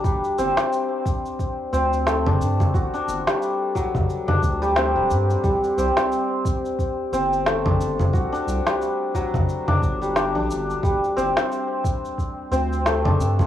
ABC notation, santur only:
X:1
M:4/4
L:1/16
Q:"Swing 16ths" 1/4=89
K:Cdor
V:1 name="Santur"
G,2 C4 z4 C2 A, D z2 | ^F D2 G, z2 ^F, z2 D z G, C G, z2 | G,2 C4 z4 C2 A, D z2 | ^F D2 G, z2 ^F, z2 D2 G, D D z2 |
G,2 C4 z4 C2 A, D z2 |]